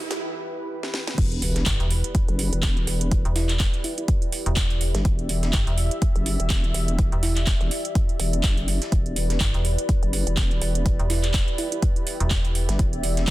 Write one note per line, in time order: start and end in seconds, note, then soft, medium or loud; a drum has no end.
0.00 1.14 E3 medium
0.00 0.21 E4 medium
0.00 1.14 E4 medium
0.00 1.14 G4 medium
0.00 0.21 A4 medium
0.00 1.14 B4 medium
0.00 0.21 E5 medium
0.00 0.21 G5 medium
0.00 riser medium
0.11 snare medium
0.11 closed hi-hat medium
0.83 snare medium
0.94 snare medium
1.07 snare medium
1.18 1.65 E1 medium
1.18 13.30 E4 medium
1.18 13.30 G4 medium
1.18 5.04 B4 medium
1.18 kick loud
1.18 closed hi-hat medium
1.18 crash loud
1.18 sub drop medium
1.32 13.30 D5 medium
1.32 closed hi-hat soft
1.42 closed hi-hat medium
1.42 open hi-hat loud
1.56 snare medium
1.56 closed hi-hat medium
1.66 1.78 G1 medium
1.66 kick loud
1.66 snare loud
1.66 clap loud
1.66 closed hi-hat medium
1.80 2.02 E1 medium
1.80 closed hi-hat soft
1.91 closed hi-hat medium
1.91 open hi-hat loud
2.04 closed hi-hat medium
2.15 kick loud
2.15 closed hi-hat medium
2.28 2.50 F#1 loud
2.28 closed hi-hat soft
2.39 closed hi-hat medium
2.39 open hi-hat loud
2.53 2.86 E1 loud
2.53 closed hi-hat medium
2.63 kick loud
2.63 snare loud
2.63 clap loud
2.63 closed hi-hat medium
2.77 closed hi-hat soft
2.87 3.23 E1 loud
2.87 closed hi-hat medium
2.87 open hi-hat loud
3.01 closed hi-hat medium
3.11 kick loud
3.11 closed hi-hat medium
3.25 3.71 E1 medium
3.25 closed hi-hat soft
3.36 3.52 E4 medium
3.36 snare medium
3.36 closed hi-hat medium
3.36 open hi-hat loud
3.49 clap soft
3.49 closed hi-hat medium
3.59 kick loud
3.59 snare loud
3.59 clap loud
3.59 closed hi-hat loud
3.59 closed hi-hat medium
3.74 closed hi-hat soft
3.84 3.93 E4 medium
3.84 closed hi-hat medium
3.84 open hi-hat medium
3.98 4.05 E4 medium
3.98 closed hi-hat medium
4.08 kick loud
4.08 closed hi-hat medium
4.22 closed hi-hat soft
4.32 closed hi-hat medium
4.32 open hi-hat loud
4.46 4.92 E1 loud
4.46 closed hi-hat medium
4.56 kick loud
4.56 snare loud
4.56 clap loud
4.56 closed hi-hat medium
4.70 closed hi-hat soft
4.81 closed hi-hat medium
4.81 open hi-hat loud
4.95 5.03 G1 loud
4.95 snare soft
4.95 closed hi-hat medium
5.05 5.52 E1 loud
5.05 8.91 E5 medium
5.05 kick loud
5.05 closed hi-hat medium
5.19 closed hi-hat soft
5.29 closed hi-hat medium
5.29 open hi-hat loud
5.43 snare medium
5.43 closed hi-hat soft
5.53 5.65 G1 medium
5.53 kick loud
5.53 snare loud
5.53 clap loud
5.53 closed hi-hat medium
5.67 5.89 E1 loud
5.67 closed hi-hat soft
5.78 closed hi-hat medium
5.78 open hi-hat loud
5.91 closed hi-hat medium
6.02 kick loud
6.02 closed hi-hat medium
6.16 6.38 F#1 loud
6.16 closed hi-hat soft
6.26 closed hi-hat medium
6.26 open hi-hat loud
6.40 6.73 E1 medium
6.40 closed hi-hat medium
6.50 kick loud
6.50 snare loud
6.50 clap loud
6.50 closed hi-hat medium
6.64 closed hi-hat soft
6.74 7.10 E1 loud
6.74 closed hi-hat medium
6.74 open hi-hat loud
6.88 closed hi-hat medium
6.99 kick loud
6.99 closed hi-hat medium
7.12 7.59 E1 medium
7.12 closed hi-hat soft
7.23 7.39 E4 medium
7.23 snare medium
7.23 closed hi-hat medium
7.23 open hi-hat loud
7.36 clap soft
7.36 closed hi-hat soft
7.47 kick loud
7.47 snare loud
7.47 clap loud
7.47 closed hi-hat medium
7.61 7.69 E1 loud
7.61 closed hi-hat soft
7.71 closed hi-hat medium
7.71 open hi-hat loud
7.85 closed hi-hat medium
7.95 kick loud
7.95 closed hi-hat medium
8.09 closed hi-hat soft
8.20 8.42 E1 medium
8.20 closed hi-hat medium
8.20 open hi-hat loud
8.33 closed hi-hat soft
8.43 8.79 F#1 medium
8.43 kick loud
8.43 snare loud
8.43 clap loud
8.43 closed hi-hat medium
8.57 closed hi-hat soft
8.68 closed hi-hat medium
8.68 open hi-hat loud
8.82 snare soft
8.82 closed hi-hat medium
8.92 9.39 E1 loud
8.92 12.78 B4 medium
8.92 kick loud
8.92 closed hi-hat medium
9.06 closed hi-hat soft
9.16 closed hi-hat medium
9.16 open hi-hat loud
9.30 snare medium
9.30 closed hi-hat soft
9.40 9.52 G1 medium
9.40 kick loud
9.40 snare loud
9.40 clap loud
9.40 closed hi-hat medium
9.54 9.76 E1 medium
9.54 closed hi-hat soft
9.65 closed hi-hat medium
9.65 open hi-hat loud
9.78 closed hi-hat medium
9.89 kick loud
9.89 closed hi-hat medium
10.03 10.25 F#1 medium
10.03 closed hi-hat soft
10.13 closed hi-hat medium
10.13 open hi-hat loud
10.27 10.60 E1 loud
10.27 closed hi-hat medium
10.37 kick loud
10.37 snare loud
10.37 clap loud
10.37 closed hi-hat medium
10.51 closed hi-hat soft
10.61 10.97 E1 loud
10.61 closed hi-hat medium
10.61 open hi-hat loud
10.75 closed hi-hat medium
10.86 kick loud
10.86 closed hi-hat medium
10.99 11.46 E1 loud
10.99 closed hi-hat soft
11.10 11.26 E4 medium
11.10 snare medium
11.10 closed hi-hat medium
11.10 open hi-hat loud
11.23 clap soft
11.23 closed hi-hat medium
11.34 kick loud
11.34 snare loud
11.34 clap loud
11.34 closed hi-hat medium
11.48 closed hi-hat soft
11.58 11.67 E4 medium
11.58 closed hi-hat medium
11.58 open hi-hat medium
11.72 11.79 E4 medium
11.72 closed hi-hat medium
11.82 kick loud
11.82 closed hi-hat medium
11.96 closed hi-hat soft
12.07 closed hi-hat medium
12.07 open hi-hat loud
12.20 12.67 E1 loud
12.20 closed hi-hat medium
12.30 kick loud
12.30 snare loud
12.30 clap loud
12.30 closed hi-hat medium
12.45 closed hi-hat soft
12.55 closed hi-hat medium
12.55 open hi-hat loud
12.69 12.78 G1 loud
12.69 snare soft
12.69 closed hi-hat medium
12.79 13.26 E1 loud
12.79 13.30 E5 medium
12.79 kick loud
12.79 closed hi-hat medium
12.93 closed hi-hat soft
13.03 closed hi-hat medium
13.03 open hi-hat loud
13.17 snare medium
13.17 closed hi-hat medium
13.27 clap loud